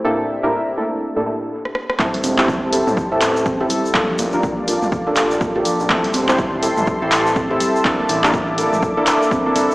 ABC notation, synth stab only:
X:1
M:4/4
L:1/16
Q:"Swing 16ths" 1/4=123
K:Aphr
V:1 name="Synth stab"
[A,,B,DEGA]2 z [A,,B,DEGB] z2 [A,B,DEGA]3 [A,,B,DEGA] [A,,B,DEGA]2 z4 | [CEGA]2 z [CEGc] z2 [CEGA]3 [CEGA]4 [CEGA]3 | [B,DFA]2 z [B,DFB] z2 [B,DFA]3 [B,DFA]4 [B,DFA]3 | [CEGA]2 z [CEGc] z2 [CEGA]3 [CEGA]4 [CEGA]3 |
[B,DEA]2 z [B,DEB] z2 [B,DEA]3 [B,DEA] [B,DEA]3 [B,DEA] [B,DEA]2 |]